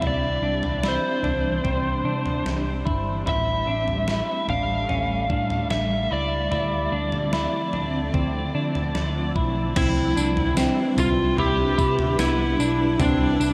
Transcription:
Already playing: E3 G3 C4 D4
0.01 C2 E4, floor tom
0.07 D5
0.42 C2 D4
0.63 floor tom
0.83 E4, snare
0.88 C5
1.23 C2 D4, floor tom
1.64 C2 C4, kick, floor tom
2.04 C3 D4
2.26 floor tom
2.45 C2, snare
2.85 G1 E4, kick
3.26 A1 G3 A3 E4 E5, kick, floor tom
3.67 A1 D4
3.88 floor tom
4.08 E4, snare
4.48 A1 D4 F5, floor tom
4.89 A1 C#4, floor tom
5.30 A2 D4, kick
5.50 floor tom
5.71 A1 E5, snare
6.11 C#2 E4 D5
6.51 D2 D3 F3 C4 E4, floor tom
6.92 D2 D4
7.12 floor tom
7.33 E4, snare
7.73 D2 D4, floor tom
8.14 D2 C4, kick, floor tom
8.55 D3 D4
8.75 floor tom
8.95 D2, snare
9.36 B1 E4, kick
9.75 C2 G3 C4 D4 E4 B4 E5, kick, floor tom, crash, tambourine
10.16 C2 D4, tambourine
10.37 floor tom
10.57 C4, snare, tambourine
10.97 C2 F4, floor tom, tambourine
11.37 C2 E4 G4, floor tom
11.78 C3 E4, kick, tambourine
11.99 floor tom
12.18 C2 B3 E4, snare, tambourine
12.59 B1 D4, tambourine
13.00 C2 C4 D4, floor tom, tambourine
13.40 C2 D4, tambourine

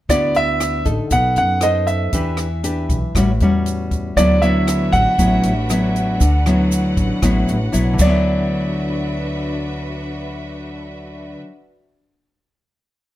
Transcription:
0.09 D2 D3 B3 E4 F#4 D5, kick, cross-stick, closed hi-hat, shaker
0.34 E5, closed hi-hat, shaker
0.60 cross-stick, closed hi-hat, shaker
0.85 A1 D#4 A4, kick, closed hi-hat, shaker
1.11 B1 B3 F#5, kick, closed hi-hat, shaker
1.36 F#2 F#5, closed hi-hat, shaker
1.61 D#4 A4 C5 D#5, cross-stick, closed hi-hat, shaker
1.87 E5, closed hi-hat, shaker
2.13 E2 E3 D4 G4 B4, kick, closed hi-hat, shaker
2.37 cross-stick, closed hi-hat, shaker
2.63 D4 G4 B4, closed hi-hat, shaker
2.89 B1, kick, closed hi-hat, shaker
3.15 A1 A2 G3 C#4 F#4, kick, cross-stick, closed hi-hat, shaker
3.40 E2 G3 C#4 F#4, closed hi-hat, shaker
3.66 closed hi-hat, shaker
3.91 kick, closed hi-hat, shaker
4.17 D2 D3 F#3 B3 D4 E4 F#4 B4 D5 E5, kick, cross-stick, closed hi-hat, shaker
4.42 F#3 B3 E4 E5, closed hi-hat, shaker
4.68 cross-stick, closed hi-hat, shaker
4.92 A1 F#5, kick, closed hi-hat, shaker
5.18 A1 A2 F#3 B3 E4, kick, closed hi-hat, shaker
5.43 A1, closed hi-hat, shaker
5.70 F#3 B3 E4, cross-stick, closed hi-hat, shaker
5.96 closed hi-hat, shaker
6.20 D2 D3 F#5, kick, closed hi-hat, shaker
6.46 F#3 B3 E4, cross-stick, closed hi-hat, shaker
6.72 closed hi-hat, shaker
6.97 A1, kick, closed hi-hat, shaker
7.22 A1 A2 F#3 B3 E4, kick, cross-stick, closed hi-hat, shaker
7.48 A1, closed hi-hat, shaker
7.72 B1 F#3 B3 E4, closed hi-hat, shaker
7.93 D3
7.99 D2 F#3 D4 F#4 B4 D5 E5, kick, crash, shaker
8.05 B3
8.09 E4

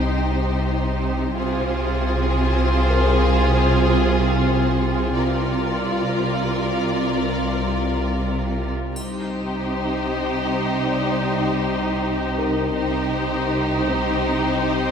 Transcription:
Already playing: C2 C3 D#4 G4 C5
1.36 C2 C3 F4 G#4 C5
2.90 A#4
5.16 C2 C3 F4 A#4 D5
5.91 F4 F5
8.96 C2 C3 D#4 G4 C5, triangle
10.87 D5
12.38 A#4
12.75 C2 C3 D#4 G4 C5
13.88 C4 C5

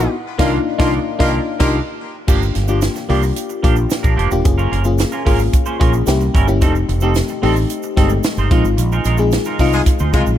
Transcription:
Already playing: B3 D#4
0.00 E4 F#4, shaker
0.38 C2 D#3 A#3 D4 D#4 F4 G4 A#4, kick, snare, crash
0.78 C2 D#3 A#3 D4 D#4 F4 G4 A#4, kick, snare
1.19 C2 D#3 A#3 D4 D#4 F4 G4 A#4, kick, snare
1.59 C2 D#3 A#3 D4 D#4 F4 G4 A#4, kick, snare, crash
2.27 G1 F3 A#3 D4 F4 G4, kick, crash, shaker
2.41 muted clean electric guitar stroke, shaker
2.55 G1, muted clean electric guitar stroke, snare, closed hi-hat
2.68 F3 A#3 D4 F4 G4, shaker
2.81 snare, closed hi-hat, shaker
2.95 muted clean electric guitar stroke, snare, shaker
3.09 C2 F3 A#3 D4 F4 G4, open hi-hat
3.23 muted clean electric guitar stroke, shaker
3.36 closed hi-hat, shaker
3.49 muted clean electric guitar stroke, shaker
3.63 A#1 F3 A#3 D4 F4 G4, kick, closed hi-hat
3.76 muted clean electric guitar stroke, shaker
3.89 muted clean electric guitar stroke, snare, closed hi-hat, shaker
4.03 A#1 F3 A#3 D4 A#4, kick, shaker
4.16 F1 F3 A#3 D4 G4, closed hi-hat
4.30 D#1 A#3 D4 F4 G4, muted clean electric guitar stroke, shaker
4.44 F#1 A#3 C#4 F4 G#4, muted clean electric guitar stroke, kick, closed hi-hat, shaker
4.58 A#3 C#4 F4 A#4, shaker
4.71 F#1 A#3 C#4 F4 A#4, closed hi-hat
4.84 A#3 C#4 F4 G#4, muted clean electric guitar stroke, shaker
4.98 muted clean electric guitar stroke, snare, closed hi-hat, shaker
5.12 A#3 C#4 F4 A#4, shaker
5.25 G#1 A#3 C#4 F4 G#4 A#4, kick, open hi-hat
5.39 muted clean electric guitar stroke, shaker
5.53 muted clean electric guitar stroke, kick, closed hi-hat, shaker
5.66 A#3 C#4 F4 C5, shaker
5.79 A#1 A#3 C#4 F4 G#4 A#4, kick, closed hi-hat
5.93 muted clean electric guitar stroke, shaker
6.06 C2 A#3 C#4 E4 G4, muted clean electric guitar stroke, snare, closed hi-hat, shaker
6.21 muted clean electric guitar stroke, shaker
6.34 G1 G3 C#4 E4 A#4, kick, closed hi-hat
6.47 A#3 C#4 E4 G4, muted clean electric guitar stroke, shaker
6.61 F1 G3 A3 C4 D#4 G4 A4, kick, closed hi-hat, shaker
6.75 muted clean electric guitar stroke, shaker
6.89 F1, muted clean electric guitar stroke, closed hi-hat
7.00 G3 A3 C4 D#4 G4 A4, shaker
7.14 snare, closed hi-hat, shaker
7.28 muted clean electric guitar stroke, shaker
7.42 A1 G3 A3 C4 D#4 G4 A4, open hi-hat
7.56 muted clean electric guitar stroke, shaker
7.70 closed hi-hat, shaker
7.83 muted clean electric guitar stroke, shaker
7.96 G1 G3 G#3 C4 D#4 G4 A4, kick, snare, closed hi-hat
8.03 A3
8.09 muted clean electric guitar stroke, shaker
8.23 muted clean electric guitar stroke, snare, closed hi-hat, shaker
8.37 G1 G3 C4 D#4 C5, shaker
8.51 A#1 G#3 C4 D#4 F4 A#4, kick, closed hi-hat
8.64 G#1, muted clean electric guitar stroke, shaker
8.77 A#1, muted clean electric guitar stroke, closed hi-hat, shaker
8.92 G#3 D#4 F4 A#4, shaker
9.05 A#1 G#3 D#4 F4 A#4, closed hi-hat, shaker
9.18 G#3 C4 D#4 G#4, muted clean electric guitar stroke, shaker
9.31 muted clean electric guitar stroke, snare, closed hi-hat, shaker
9.45 G#3 D#4 F4 A#4, shaker
9.59 C2 G#3 C4 D#4 F4 A#4, kick, open hi-hat, shaker
9.72 G#3 D#4 F4 G#4, muted clean electric guitar stroke, shaker
9.86 muted clean electric guitar stroke, kick, closed hi-hat, shaker
9.99 D2 G#3 D#4 F4 C5, shaker
10.13 C2 G#3 C4 D#4 F4 G#4 A#4, kick, closed hi-hat, shaker
10.26 A#1, muted clean electric guitar stroke, shaker

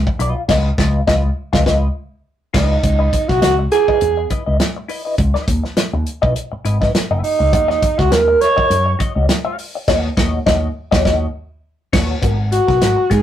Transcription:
0.07 muted clean electric guitar stroke, kick
0.19 B1 F4 B4 D#5, closed hi-hat
0.36 muted clean electric guitar stroke
0.48 C#2 F4 B4 D#5, kick, snare, crash
0.78 C#2 F4 B4 D#5, kick, snare
1.07 C#2 F4 B4 D#5, kick, snare
1.53 C#2 F4 B4 D#5, kick, snare
1.66 C#2 F4 B4 D#5, kick, snare
2.54 C#2 D#4 F4 B4 D#5, kick, snare, crash
2.83 C#2, muted clean electric guitar stroke, kick, closed hi-hat
2.99 E4 B4 D#5
3.13 kick, closed hi-hat
3.29 B1 F#4, muted clean electric guitar stroke, kick, snare
3.42 C#2 F#4, muted clean electric guitar stroke, snare, closed hi-hat
3.59 muted clean electric guitar stroke
3.72 G#4, snare, closed hi-hat
3.88 E4 B4 D#5, kick
4.01 E2, muted clean electric guitar stroke, closed hi-hat
4.17 muted clean electric guitar stroke
4.30 E4 B4 D#5, kick, closed hi-hat
4.46 C#2 E4 B4 D#5
4.60 muted clean electric guitar stroke, snare, closed hi-hat
4.76 muted clean electric guitar stroke
4.88 E4 B4 D#5, open hi-hat
5.05 E4 B4 D#5
5.18 C#2, muted clean electric guitar stroke, kick, closed hi-hat
5.34 E4 B4 D#5, snare
5.48 D#2, muted clean electric guitar stroke, kick, closed hi-hat
5.64 muted clean electric guitar stroke, snare
5.77 muted clean electric guitar stroke, snare, closed hi-hat
5.93 D#2, muted clean electric guitar stroke
6.06 closed hi-hat
6.22 B1 E4 B4 D#5, kick
6.36 muted clean electric guitar stroke, closed hi-hat
6.52 muted clean electric guitar stroke, muted picked electric bass stroke
6.65 G#1 E4 B4 D#5, closed hi-hat
6.81 E4 B4 D#5, kick, snare
6.94 muted picked electric bass stroke, muted clean electric guitar stroke, snare, closed hi-hat
7.11 F#1 E4 B4 E5
7.24 D#4, open hi-hat
7.39 C#2, muted clean electric guitar stroke
7.52 D#2, muted clean electric guitar stroke, kick, closed hi-hat
7.68 F#4 C#5 D#5, snare
7.82 muted clean electric guitar stroke, kick, closed hi-hat
7.98 C#2 F#4, muted clean electric guitar stroke, kick, snare
8.11 D#2 A#4, muted clean electric guitar stroke, snare, closed hi-hat
8.28 muted clean electric guitar stroke
8.41 C#5, snare, closed hi-hat
8.57 F#4 C#5 D#5, kick
8.69 F#2, muted clean electric guitar stroke, closed hi-hat
8.86 muted clean electric guitar stroke
8.99 F#4 C#5 D#5, kick, closed hi-hat
9.15 C#2 F#4 C#5 D#5
9.29 muted clean electric guitar stroke, snare, closed hi-hat
9.45 F#4 C#5 F5
9.58 muted clean electric guitar stroke, open hi-hat
9.75 muted clean electric guitar stroke
9.88 D#2 F#4 C#5 D#5, kick, snare, crash
10.17 D#2 F#4 C#5 D#5, kick, snare
10.46 D#2 F#4 C#5 D#5, kick, snare
10.91 D#2 F#4 C#5 D#5, kick, snare
11.05 D#2 F#4 C#5 D#5, kick, snare
11.93 D#2 F#4 C#5, kick, snare, crash
12.22 G#1 B3 F#4 A#4, kick, closed hi-hat
12.51 F#4, muted clean electric guitar stroke, closed hi-hat
12.67 B1 B3 F#4 A#4, kick, snare
12.81 G#1, snare, closed hi-hat
12.96 muted clean electric guitar stroke
13.10 G#2 B3 F#4 G#4 A#4, kick, snare, closed hi-hat

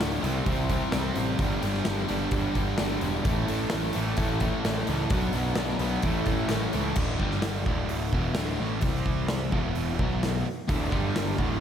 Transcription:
Already playing: D2 A2 D3
0.00 D1 D2 A2 D3 A3 F#4, snare, open hi-hat
0.22 C2 C3 G3 C4 E4 G4 C5, open hi-hat
0.44 C2 C3 G3 C4 E4 G4 C5, kick, open hi-hat
0.48 C4
0.69 C3 G3 C4 E4 G4 C5, kick, open hi-hat
0.91 C2 C3 G3 C4 E4 G4 C5, snare, open hi-hat
1.14 A1 C3 G3 C4 E4 G4 C5, open hi-hat
1.38 G1 G2 D3 G3 B3 D4 G4, kick, open hi-hat
1.43 G3
1.61 G1 G2 D3 G3 B3 D4 G4, open hi-hat
1.74 snare
1.84 G1 G2 D3 G3 B3 D4 G4, snare, open hi-hat
2.08 G1 G2 D3 G3 B3 D4 G4, open hi-hat
2.31 G1 G2 D3 G3 B3 D4 G4, kick, open hi-hat
2.54 G1 G2 D3 G3 B3 D4 G4, kick, open hi-hat
2.77 G1 G2 D3 G3 B3 D4 G4, snare, open hi-hat
3.01 E1 G2 D3 G3 B3 D4 G4, open hi-hat
3.24 A1 A2 E3 A3 C#4 E4 A4, kick, open hi-hat
3.47 A1 A2 E3 A3 C#4 E4 A4, open hi-hat
3.70 A1 A2 E3 A3 C#4 E4 A4, snare, open hi-hat
3.93 A1 A2 E3 A3 C#4 E4 A4, open hi-hat
4.17 A1 A2 E3 A3 C#4 E4 A4, kick, open hi-hat
4.40 A2 E3 A3 C#4 E4 A4, kick, open hi-hat
4.63 A1 A2 E3 A3 C#4 E4 A4, snare, open hi-hat
4.86 C#2 A2 E3 A3 C#4 E4 A4, open hi-hat
5.10 B1 B2 F#3 B3 D4 F#4 B4, kick, open hi-hat
5.33 B1 B2 F#3 B3 D4 F#4 B4, open hi-hat
5.55 B1 B2 F#3 B3 D4 F#4 B4, snare, open hi-hat
5.69 snare
5.79 B1 B2 F#3 B3 D4 F#4 B4, open hi-hat
6.02 A1 A2 E3 A3 C#4 E4 A4, kick, open hi-hat
6.25 A1 A2 E3 A3 C#4 E4 A4, kick, open hi-hat
6.49 A1 A2 E3 A3 C#4 E4 A4, snare, open hi-hat
6.72 C#2 A2 E3 A3 C#4 E4 A4, open hi-hat
6.96 D1 D2 A2 D3, kick, crash
7.20 G1 G2 D3 G3, kick
7.31 snare
7.42 snare, open hi-hat
7.66 D1 D2 A2 D3, kick
7.89 open hi-hat
8.13 E1 E2 B2 E3, kick
8.35 D1 D2 A2 D3, snare, open hi-hat
8.59 A1 A2 E3 A3
8.81 C2 C3 G3 C4, kick, open hi-hat
9.06 kick
9.28 snare, open hi-hat
9.52 E1 E2 B2 E3, kick
9.75 open hi-hat
9.99 B1 B2 F#3 B3, kick
10.23 snare, open hi-hat
10.45 muted overdriven electric guitar stroke, muted distorted electric guitar stroke, muted picked electric bass stroke
10.67 D1 D2 A2 D3, kick, open hi-hat
10.91 G1 G2 D3 G3, kick
11.16 snare, open hi-hat
11.38 D1 D2 A2 D3, kick

